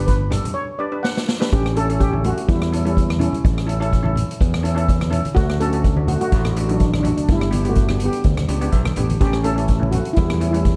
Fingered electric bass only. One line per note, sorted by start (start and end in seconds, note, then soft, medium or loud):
0.00 0.40 G1 loud
1.53 2.32 A1 medium
2.48 3.28 E2 loud
3.45 4.24 A1 loud
4.41 5.20 E2 loud
5.37 6.16 D2 loud
6.33 7.12 A1 loud
7.29 8.08 G1 loud
8.25 8.44 D2 loud
8.49 8.70 C#2 medium
8.73 8.95 B1 medium
8.97 9.18 A1 medium
9.21 10.00 A1 medium
10.18 10.76 E2 loud